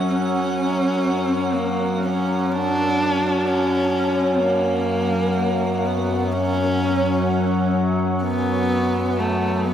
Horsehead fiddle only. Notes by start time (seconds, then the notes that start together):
0.08 C#4
1.55 A#3
2.03 C#4
2.52 D4
3.46 C#4
4.41 A#3
5.85 B3
6.32 C#4
8.23 B3
9.20 A3
9.65 B3